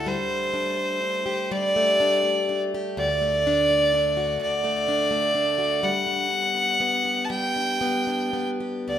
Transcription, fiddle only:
0.08 1.53 C5 medium
1.52 2.61 D5 medium
2.98 4.38 D5 medium
4.42 5.85 D5 loud
5.84 7.26 F#5 medium
7.25 7.31 A5 medium
7.29 8.48 G5 medium
8.88 8.99 D5 medium

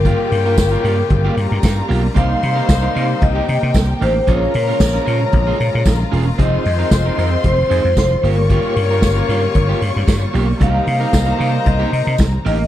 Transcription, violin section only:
0.00 1.33 G4 medium
0.00 1.34 G5 medium
1.36 2.14 A#4 medium
1.36 2.14 A#5 medium
2.16 3.20 C5 medium
2.16 3.20 C6 medium
3.21 4.25 G4 medium
3.21 4.25 G5 medium
4.28 6.35 A#4 medium
4.28 6.35 A#5 medium
6.38 8.19 C5 medium
6.38 8.19 C6 medium
8.23 10.57 C#5 medium
8.23 10.57 C#6 medium
10.60 12.67 A#4 medium
10.60 12.67 A#5 medium

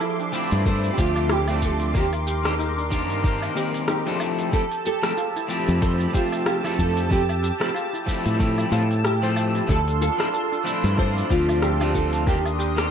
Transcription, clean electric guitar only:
0.32 0.62 F3 medium
0.32 0.62 A3 medium
0.32 0.63 C4 medium
0.32 0.63 D4 medium
0.32 0.63 E4 medium
0.65 0.94 F3 medium
0.65 0.95 A3 medium
0.65 0.95 C4 medium
0.65 0.95 D4 medium
0.65 0.96 E4 medium
0.97 1.44 F3 medium
0.97 1.44 A3 medium
0.97 1.45 C4 medium
0.97 1.45 D4 medium
0.97 1.45 G4 medium
1.48 1.91 F3 medium
1.48 1.91 A3 medium
1.48 1.92 C4 medium
1.48 1.92 D4 medium
1.94 2.04 D#3 medium
1.94 2.05 A#3 medium
1.94 2.05 C4 medium
1.94 2.05 D4 medium
1.94 2.05 G4 medium
2.44 2.52 D#3 loud
2.44 2.53 A#3 medium
2.44 2.53 C4 medium
2.44 2.53 D4 loud
2.44 2.53 G4 loud
2.90 3.20 D#3 medium
2.90 3.20 A#3 medium
2.90 3.21 C4 medium
2.90 3.21 D4 medium
2.90 3.21 G4 medium
3.23 3.52 D#3 medium
3.23 3.53 A#3 medium
3.23 3.53 C4 medium
3.23 3.53 D4 medium
3.23 3.54 G4 medium
3.55 4.02 D#3 medium
3.55 4.02 A#3 medium
3.55 4.03 C4 medium
3.55 4.03 A#4 medium
3.55 4.03 D5 medium
4.06 4.49 F3 medium
4.06 4.49 A3 medium
4.06 4.49 C4 medium
4.06 4.50 E4 medium
4.06 4.50 A4 medium
4.51 4.62 F3 medium
4.51 4.62 A3 medium
4.51 4.63 C4 medium
4.51 4.63 E4 medium
4.51 4.63 G4 medium
5.02 5.10 F3 loud
5.02 5.11 A3 medium
5.02 5.11 C4 medium
5.02 5.11 E4 medium
5.02 5.12 G4 loud
5.48 5.78 F3 medium
5.48 5.78 A3 medium
5.48 5.78 C4 medium
5.48 5.79 E4 medium
5.48 5.79 G4 medium
5.80 6.10 F3 medium
5.80 6.10 A3 medium
5.80 6.11 C4 medium
5.80 6.11 E4 medium
5.80 6.11 G4 medium
6.12 6.60 F3 medium
6.12 6.60 A3 medium
6.12 6.60 C4 medium
6.12 6.61 C5 medium
6.12 6.61 E5 medium
6.64 7.07 F3 medium
6.64 7.07 A3 medium
6.64 7.08 C4 medium
6.64 7.08 A4 loud
6.64 7.08 E5 medium
7.10 7.20 F3 medium
7.10 7.21 A3 medium
7.10 7.21 C4 medium
7.10 7.21 E4 medium
7.10 7.21 G4 medium
7.60 7.68 F3 medium
7.60 7.68 A3 medium
7.60 7.69 C4 medium
7.60 7.69 E4 medium
7.60 7.69 G4 loud
8.06 8.36 F3 medium
8.06 8.36 A3 medium
8.06 8.36 C4 medium
8.06 8.37 E4 medium
8.06 8.37 G4 medium
8.38 8.68 F3 medium
8.38 8.68 A3 medium
8.38 8.69 C4 medium
8.38 8.69 E4 medium
8.38 8.69 G4 medium
8.71 8.81 F3 medium
8.71 8.82 A3 medium
8.71 8.82 C4 medium
8.71 8.82 E4 medium
8.71 8.83 A4 medium
9.22 9.65 F3 medium
9.22 9.65 A3 medium
9.22 9.66 C4 medium
9.22 9.66 A4 medium
9.67 9.78 F3 medium
9.67 9.78 A3 medium
9.67 9.78 C4 medium
9.67 9.79 D4 medium
9.67 9.79 E4 medium
10.18 10.26 F3 medium
10.18 10.26 A3 medium
10.18 10.27 C4 medium
10.18 10.27 D4 medium
10.18 10.27 E4 loud
10.64 10.94 F3 medium
10.64 10.94 A3 medium
10.64 10.95 C4 medium
10.64 10.95 D4 medium
10.64 10.95 E4 medium
10.96 11.26 F3 medium
10.96 11.26 A3 medium
10.96 11.27 C4 medium
10.96 11.27 D4 medium
10.96 11.27 E4 medium
11.29 11.76 F3 medium
11.29 11.77 A3 medium
11.29 11.77 C4 medium
11.29 11.77 D4 medium
11.29 11.77 G4 medium
11.80 12.23 F3 medium
11.80 12.24 A3 medium
11.80 12.24 C4 medium
11.80 12.24 D4 medium
11.80 12.25 F4 loud
12.26 12.37 D#3 medium
12.26 12.37 A#3 medium
12.26 12.37 C4 medium
12.26 12.37 D4 medium
12.26 12.38 G4 medium
12.76 12.84 D#3 loud
12.76 12.85 A#3 medium
12.76 12.85 C4 medium
12.76 12.85 D4 medium
12.76 12.86 G4 loud

